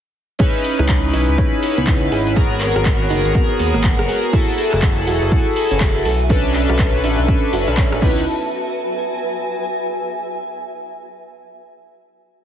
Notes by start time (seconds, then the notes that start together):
0.39 C#4 D#4 E4 G#4 B4, kick, closed hi-hat
0.64 open hi-hat
0.79 C#2 E4 C#5, cross-stick, closed hi-hat
0.89 F#5, kick, clap, closed hi-hat
1.13 B1 D#4, open hi-hat
1.28 C#2 B5, closed hi-hat
1.38 C#4, kick, closed hi-hat
1.62 C#4 D#4 E4 B4, open hi-hat
1.78 C#2 B3, closed hi-hat
1.87 kick, clap, closed hi-hat
2.12 G#1 G#4, open hi-hat
2.27 closed hi-hat
2.36 B3 F#4 G#4 A#4, kick, closed hi-hat
2.61 clap, open hi-hat
2.76 G#1 F#4, cross-stick, closed hi-hat
2.85 kick, clap, closed hi-hat
3.10 F#1 D#4, open hi-hat
3.25 G#1 A#5, closed hi-hat
3.35 B3, kick, closed hi-hat
3.59 D#2 B3 F#4 G#4 A#4, open hi-hat
3.74 G#1 A#3, cross-stick, closed hi-hat
3.84 kick, clap, closed hi-hat
3.99 F#1, cross-stick
4.09 G#4, open hi-hat
4.23 closed hi-hat
4.32 E4 F#4 G#4 A4, kick, closed hi-hat
4.53 B4
4.58 open hi-hat
4.73 F#1 G#4 G#5, cross-stick, closed hi-hat
4.81 E5, kick, clap, closed hi-hat
5.07 E1 F#4, open hi-hat
5.22 F#1, closed hi-hat
5.32 E4, kick, closed hi-hat
5.56 E4 F#4 G#4 A4, open hi-hat
5.71 F#1 C#4, closed hi-hat
5.80 kick, clap, closed hi-hat
6.05 B1 A4, open hi-hat
6.20 closed hi-hat
6.29 C#4 D4 A4 B4, kick, closed hi-hat
6.54 clap, open hi-hat
6.69 B1 F#4, cross-stick, closed hi-hat
6.77 A5, kick, clap, closed hi-hat
7.04 A1 D4, open hi-hat
7.19 B1, closed hi-hat
7.28 C#4, kick, closed hi-hat
7.52 F#1 C#4 D4 F#4 A4 B4, open hi-hat
7.68 B1 D4, cross-stick, closed hi-hat
7.77 C#5, kick, clap, closed hi-hat
7.92 A1, cross-stick
8.01 C#2 B3 C#4 D#4 E4 F#4 B4, kick, crash
8.11 B4
8.43 E5
8.49 G#5